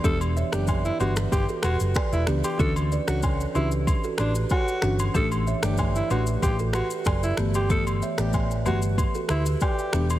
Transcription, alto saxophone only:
\new Staff \with { instrumentName = "Alto saxophone" } { \time 4/4 \key g \lydian \tempo 4 = 94 a'16 r8 g'16 r16 e'16 fis'16 r16 g'16 r16 fis'16 r8 e'16 r16 g'16 | a'16 r8 fis'16 r8 e'16 r8. d'16 r16 fis'8. r16 | a'16 r8 g'16 r16 e'16 fis'16 r16 g'16 r16 fis'16 r8 e'16 r16 g'16 | a'16 r8 g'16 r8 fis'16 r8. e'16 r16 g'8. r16 | }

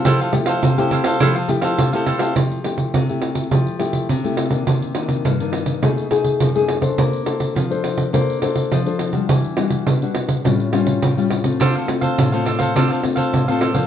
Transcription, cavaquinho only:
\new Staff \with { instrumentName = "Cavaquinho" } { \time 4/4 \key f \major \tempo 4 = 104 <e' a' c'' f''>16 <a' c'' f''>16 r16 <a' c'' f''>8 <a' c'' f''>16 <e' a' c'' f''>16 <a' c'' f''>16 <e' a' c'' f''>16 <a' c'' f''>16 r16 <a' c'' f''>8 <a' c'' f''>16 <e' a' c'' f''>16 <a' c'' f''>16 | r1 | r1 | r1 |
r1 | <d' a' c'' f''>16 <a' c'' f''>16 r16 <a' c'' f''>8 <a' c'' f''>16 <d' a' c'' f''>16 <a' c'' f''>16 <d' a' c'' f''>16 <a' c'' f''>16 r16 <a' c'' f''>8 <a' c'' f''>16 <d' a' c'' f''>16 <a' c'' f''>16 | }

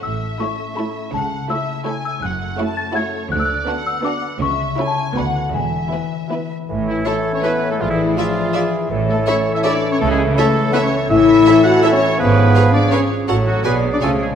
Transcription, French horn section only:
\new Staff \with { instrumentName = "French horn section" } { \time 3/4 \key a \major \tempo 4 = 164 r2. | r2. | r2. | r2. |
r2. | r2. | r8 e8 a8. cis'16 b8. a16 | f16 e8. f4. r8 |
r8 a8 cis'8. e'16 d'8. cis'16 | a16 gis8. a4 b16 cis'8. | \key cis \phrygian e'4. fis'8 e'16 cis'8. | b4. d'8 cis'8 r8 |
r8 fis8 b8. d'16 a8 gis8 | }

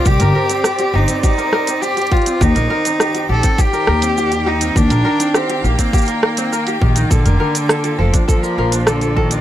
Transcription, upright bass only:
\new Staff \with { instrumentName = "Upright bass" } { \clef bass \time 4/4 \key bes \major \tempo 4 = 102 c,16 g,,16 r4 g,,16 r2 r16 | ees,16 bes,,16 r4 bes,,16 r8. ees,4. | ees,16 bes,,16 r4 bes,,16 r4. r16 bes,,16 r16 | bes,,16 f,,16 r4 f,,16 r8. bes,,4. | }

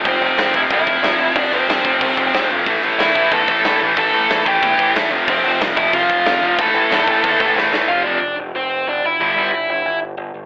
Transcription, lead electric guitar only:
\new Staff \with { instrumentName = "Lead electric guitar" } { \time 4/4 \key f \lydian \tempo 4 = 184 <c' c''>4. <e' e''>8 <e' e''>2 | <d' d''>8 <c' c''>2. r8 | r4 <e' e''>4 <a' a''>4. r8 | <a' a''>4. <g' g''>4. r4 |
<c' c''>4 r8 <e' e''>8 <f' f''>2 | <a' a''>2. r4 | <f' f''>8 <d' d''>4 r8 <c' c''>4 <d' d''>8 <e' e''>8~ | <e' e''>2~ <e' e''>8 r4. | }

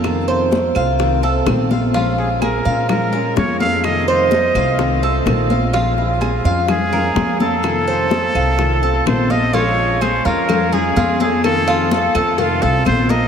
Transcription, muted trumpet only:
\new Staff \with { instrumentName = "Muted trumpet" } { \time 4/4 \key bes \minor \tempo 4 = 126 r1 | r8 aes'8 bes'4 bes'4 des''8 f''8 | ees''8 ees''2 r4. | r8 f'4. aes'4. a'8~ |
a'2. c''8 ees''8 | des''4 c''8 bes'4 aes'4 aes'8 | a'4 a'4 f'8 a'8 c''8 ees''8 | }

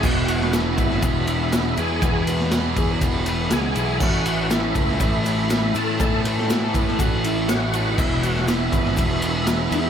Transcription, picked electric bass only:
\new Staff \with { instrumentName = "Picked electric bass" } { \clef bass \time 4/4 \key e \major \tempo 4 = 121 e,,4. gis,,8 e,,4. e,8 | e,4. e,8 e,,4 cis,8 b,,8 | a,,4. cis,8 a,,4. a,8 | a,4. a,8 a,,2 |
e,,4. gis,,8 e,,4. e,8 | }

